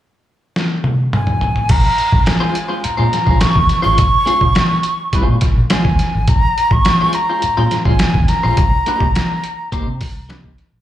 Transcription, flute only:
0, 0, Header, 1, 2, 480
1, 0, Start_track
1, 0, Tempo, 573614
1, 1416, Time_signature, 4, 2, 24, 8
1, 9047, End_track
2, 0, Start_track
2, 0, Title_t, "Flute"
2, 0, Program_c, 0, 73
2, 961, Note_on_c, 0, 80, 83
2, 1429, Note_on_c, 0, 82, 90
2, 1441, Note_off_c, 0, 80, 0
2, 1889, Note_off_c, 0, 82, 0
2, 1894, Note_on_c, 0, 80, 75
2, 2376, Note_on_c, 0, 82, 92
2, 2389, Note_off_c, 0, 80, 0
2, 2846, Note_on_c, 0, 85, 115
2, 2858, Note_off_c, 0, 82, 0
2, 3202, Note_off_c, 0, 85, 0
2, 3207, Note_on_c, 0, 85, 118
2, 4512, Note_off_c, 0, 85, 0
2, 4785, Note_on_c, 0, 80, 91
2, 5261, Note_on_c, 0, 82, 103
2, 5274, Note_off_c, 0, 80, 0
2, 5626, Note_on_c, 0, 85, 113
2, 5638, Note_off_c, 0, 82, 0
2, 5981, Note_on_c, 0, 82, 97
2, 5994, Note_off_c, 0, 85, 0
2, 6572, Note_on_c, 0, 80, 95
2, 6585, Note_off_c, 0, 82, 0
2, 6935, Note_on_c, 0, 82, 99
2, 6948, Note_off_c, 0, 80, 0
2, 8615, Note_off_c, 0, 82, 0
2, 9047, End_track
0, 0, End_of_file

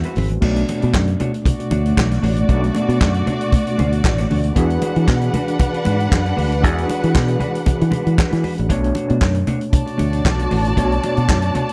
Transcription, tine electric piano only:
0, 0, Header, 1, 2, 480
1, 0, Start_track
1, 0, Tempo, 517688
1, 390, Time_signature, 4, 2, 24, 8
1, 10875, End_track
2, 0, Start_track
2, 0, Title_t, "Tine electric piano"
2, 0, Program_c, 0, 4
2, 0, Control_c, 0, 64, 127
2, 0, Note_on_c, 0, 56, 68
2, 0, Note_on_c, 0, 64, 64
2, 0, Note_on_c, 0, 66, 63
2, 0, Note_on_c, 0, 71, 71
2, 0, Note_on_c, 0, 72, 77
2, 105, Note_off_c, 0, 56, 0
2, 110, Note_off_c, 0, 64, 0
2, 113, Note_off_c, 0, 66, 0
2, 118, Note_off_c, 0, 71, 0
2, 121, Note_off_c, 0, 72, 0
2, 378, Note_on_c, 0, 47, 82
2, 386, Note_on_c, 0, 57, 74
2, 396, Note_on_c, 0, 62, 72
2, 404, Control_c, 0, 64, 0
2, 406, Note_on_c, 0, 74, 82
2, 575, Control_c, 0, 64, 127
2, 2266, Note_off_c, 0, 47, 0
2, 2270, Note_off_c, 0, 57, 0
2, 2275, Note_off_c, 0, 62, 0
2, 2280, Note_off_c, 0, 74, 0
2, 2305, Note_on_c, 0, 47, 78
2, 2317, Note_on_c, 0, 57, 72
2, 2324, Note_on_c, 0, 62, 72
2, 2338, Note_on_c, 0, 74, 85
2, 4190, Note_off_c, 0, 47, 0
2, 4196, Note_off_c, 0, 57, 0
2, 4199, Note_off_c, 0, 62, 0
2, 4206, Note_off_c, 0, 74, 0
2, 4222, Note_on_c, 0, 52, 83
2, 4233, Note_on_c, 0, 62, 67
2, 4242, Control_c, 0, 64, 0
2, 4247, Note_on_c, 0, 66, 74
2, 4251, Note_on_c, 0, 68, 84
2, 4401, Control_c, 0, 64, 127
2, 6108, Note_off_c, 0, 52, 0
2, 6113, Note_off_c, 0, 62, 0
2, 6121, Note_off_c, 0, 66, 0
2, 6123, Note_off_c, 0, 68, 0
2, 6127, Note_on_c, 0, 52, 78
2, 6139, Note_on_c, 0, 62, 79
2, 6152, Note_on_c, 0, 66, 75
2, 6160, Note_on_c, 0, 68, 83
2, 8021, Note_off_c, 0, 52, 0
2, 8027, Note_off_c, 0, 62, 0
2, 8033, Note_off_c, 0, 66, 0
2, 8037, Note_off_c, 0, 68, 0
2, 8058, Note_on_c, 0, 47, 72
2, 8063, Note_on_c, 0, 57, 70
2, 8078, Note_on_c, 0, 62, 74
2, 8081, Control_c, 0, 64, 0
2, 8085, Note_on_c, 0, 73, 87
2, 8244, Control_c, 0, 64, 127
2, 9946, Note_off_c, 0, 47, 0
2, 9948, Note_off_c, 0, 57, 0
2, 9956, Note_off_c, 0, 62, 0
2, 9959, Note_off_c, 0, 73, 0
2, 9977, Note_on_c, 0, 47, 84
2, 9983, Note_on_c, 0, 57, 67
2, 9993, Note_on_c, 0, 62, 65
2, 10004, Note_on_c, 0, 73, 86
2, 10875, Note_off_c, 0, 47, 0
2, 10875, Note_off_c, 0, 57, 0
2, 10875, Note_off_c, 0, 62, 0
2, 10875, Note_off_c, 0, 73, 0
2, 10875, End_track
0, 0, End_of_file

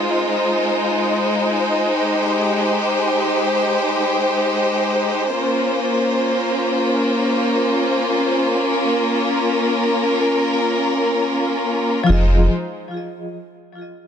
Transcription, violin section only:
0, 0, Header, 1, 2, 480
1, 0, Start_track
1, 0, Key_signature, -4, "minor"
1, 0, Tempo, 500000
1, 13509, End_track
2, 0, Start_track
2, 0, Title_t, "Violin section"
2, 0, Program_c, 0, 48
2, 0, Note_on_c, 0, 56, 76
2, 0, Note_on_c, 0, 63, 64
2, 0, Note_on_c, 0, 65, 66
2, 0, Note_on_c, 0, 72, 76
2, 1831, Note_off_c, 0, 65, 0
2, 1857, Note_on_c, 0, 67, 67
2, 5067, Note_off_c, 0, 63, 0
2, 5069, Note_off_c, 0, 56, 0
2, 5076, Note_off_c, 0, 67, 0
2, 5115, Note_on_c, 0, 65, 65
2, 5116, Note_on_c, 0, 61, 67
2, 5117, Note_on_c, 0, 58, 73
2, 8314, Note_off_c, 0, 72, 0
2, 8357, Note_on_c, 0, 70, 76
2, 11566, Note_off_c, 0, 65, 0
2, 11567, Note_off_c, 0, 58, 0
2, 11567, Note_off_c, 0, 61, 0
2, 11571, Note_off_c, 0, 70, 0
2, 11589, Note_on_c, 0, 65, 62
2, 11592, Note_on_c, 0, 72, 77
2, 11594, Note_on_c, 0, 56, 72
2, 11595, Note_on_c, 0, 63, 66
2, 11973, Note_off_c, 0, 65, 0
2, 11975, Note_off_c, 0, 72, 0
2, 11976, Note_off_c, 0, 56, 0
2, 11976, Note_off_c, 0, 63, 0
2, 13509, End_track
0, 0, End_of_file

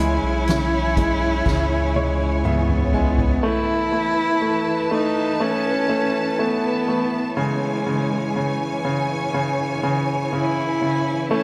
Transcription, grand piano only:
0, 0, Header, 1, 2, 480
1, 0, Start_track
1, 0, Tempo, 983607
1, 1676, Time_signature, 4, 2, 24, 8
1, 5579, End_track
2, 0, Start_track
2, 0, Title_t, "Grand piano"
2, 0, Program_c, 0, 0
2, 0, Control_c, 0, 64, 127
2, 0, Note_on_c, 0, 49, 70
2, 0, Note_on_c, 0, 56, 52
2, 231, Note_off_c, 0, 49, 0
2, 238, Note_on_c, 0, 49, 52
2, 469, Note_off_c, 0, 56, 0
2, 477, Note_on_c, 0, 56, 55
2, 706, Note_off_c, 0, 49, 0
2, 713, Note_on_c, 0, 49, 64
2, 949, Note_off_c, 0, 56, 0
2, 956, Note_on_c, 0, 56, 57
2, 957, Note_on_c, 0, 73, 70
2, 1180, Note_off_c, 0, 73, 0
2, 1189, Note_off_c, 0, 49, 0
2, 1196, Note_on_c, 0, 49, 55
2, 1196, Note_on_c, 0, 76, 63
2, 1419, Note_off_c, 0, 76, 0
2, 1426, Note_off_c, 0, 56, 0
2, 1433, Note_on_c, 0, 56, 51
2, 1435, Note_on_c, 0, 80, 67
2, 1659, Note_off_c, 0, 80, 0
2, 1661, Note_off_c, 0, 49, 0
2, 1667, Note_off_c, 0, 56, 0
2, 1674, Note_on_c, 0, 57, 77
2, 1683, Control_c, 0, 64, 0
2, 1762, Control_c, 0, 64, 127
2, 1906, Note_off_c, 0, 57, 0
2, 1913, Note_on_c, 0, 57, 55
2, 2148, Note_off_c, 0, 57, 0
2, 2156, Note_on_c, 0, 57, 51
2, 2390, Note_off_c, 0, 57, 0
2, 2397, Note_on_c, 0, 57, 64
2, 2629, Note_off_c, 0, 57, 0
2, 2637, Note_on_c, 0, 57, 66
2, 2869, Note_off_c, 0, 57, 0
2, 2876, Note_on_c, 0, 57, 68
2, 3112, Note_off_c, 0, 57, 0
2, 3119, Note_on_c, 0, 57, 59
2, 3351, Note_off_c, 0, 57, 0
2, 3358, Note_on_c, 0, 57, 49
2, 3590, Note_off_c, 0, 57, 0
2, 3595, Note_on_c, 0, 49, 75
2, 3602, Control_c, 0, 64, 0
2, 3699, Control_c, 0, 64, 127
2, 3831, Note_off_c, 0, 49, 0
2, 3838, Note_on_c, 0, 49, 59
2, 4071, Note_off_c, 0, 49, 0
2, 4078, Note_on_c, 0, 49, 56
2, 4310, Note_off_c, 0, 49, 0
2, 4317, Note_on_c, 0, 49, 62
2, 4552, Note_off_c, 0, 49, 0
2, 4559, Note_on_c, 0, 49, 68
2, 4791, Note_off_c, 0, 49, 0
2, 4798, Note_on_c, 0, 49, 71
2, 5032, Note_off_c, 0, 49, 0
2, 5040, Note_on_c, 0, 49, 61
2, 5272, Note_off_c, 0, 49, 0
2, 5279, Note_on_c, 0, 49, 53
2, 5510, Note_off_c, 0, 49, 0
2, 5518, Note_on_c, 0, 57, 84
2, 5523, Control_c, 0, 64, 0
2, 5579, Note_off_c, 0, 57, 0
2, 5579, End_track
0, 0, End_of_file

